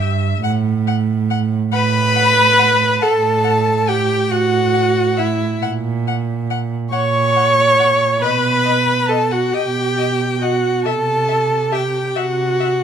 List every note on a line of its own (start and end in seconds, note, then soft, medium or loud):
0.00 0.39 G2 medium
0.00 0.40 E5 medium
0.43 1.58 A2 medium
0.43 0.51 F#5 medium
0.87 0.95 F#5 medium
1.30 1.38 F#5 medium
1.72 2.87 A2 medium
1.72 3.04 B4 loud
1.72 1.80 F#5 medium
1.72 2.98 B5 medium
2.15 2.23 F#5 medium
2.59 2.67 F#5 medium
3.01 4.15 A2 medium
3.01 3.90 A4 medium
3.01 3.09 F#5 medium
3.01 3.90 A5 medium
3.44 3.52 F#5 medium
3.88 4.32 G4 medium
3.88 3.96 F#5 medium
3.88 4.32 G5 medium
4.30 5.45 A2 medium
4.30 5.20 F#4 medium
4.30 5.18 F#5 medium
4.30 4.39 F#5 medium
4.74 4.82 F#5 soft
5.17 5.62 E4 medium
5.17 5.61 E5 medium
5.17 5.26 F#5 soft
5.61 6.76 A#2 medium
5.61 5.70 F#5 medium
6.07 6.15 F#5 soft
6.50 6.58 F#5 soft
6.92 8.06 A#2 medium
6.92 8.24 C#5 medium
6.92 7.00 F#5 medium
6.92 8.17 C#6 medium
7.36 7.44 F#5 soft
7.80 7.88 F#5 soft
8.21 9.37 B2 medium
8.21 9.11 B4 medium
8.21 8.31 D#5 soft
8.21 9.10 B5 medium
8.65 8.73 D#5 soft
9.08 9.34 A4 medium
9.08 9.18 D#5 soft
9.08 9.33 A5 medium
9.31 9.54 F#4 medium
9.31 9.55 F#5 medium
9.53 10.70 B2 medium
9.53 10.40 G4 medium
9.53 9.62 D#5 soft
9.53 10.44 G5 medium
9.97 10.05 D#5 soft
10.41 10.87 F#4 medium
10.41 10.49 D#5 soft
10.41 10.85 F#5 medium
10.85 12.01 C3 medium
10.85 11.74 A4 medium
10.85 10.93 E5 soft
10.85 11.75 A5 medium
11.28 11.36 E5 soft
11.72 12.18 G4 medium
11.72 11.80 E5 soft
11.72 12.18 G5 medium
12.16 12.84 C3 medium
12.16 12.84 F#4 medium
12.16 12.24 E5 soft
12.16 12.84 F#5 medium
12.60 12.68 E5 soft